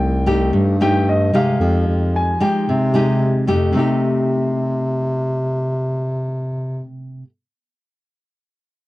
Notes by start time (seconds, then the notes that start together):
Already playing: C2 C3 A3 D#4 G4 G5
0.26 A3 D#4 G4
0.53 G2
0.81 A3 D#4 G4 G5
1.09 D#5
1.33 C3 G#3 D#4 G4 F5
1.59 F2 F3
1.87 F2
2.16 G#5
2.40 G#3 D#4 G4 G5
2.68 C3
2.94 G#3 D#4 G4
3.47 F2 A3 D#4 G4
3.73 C3 A3
3.77 D#4 G4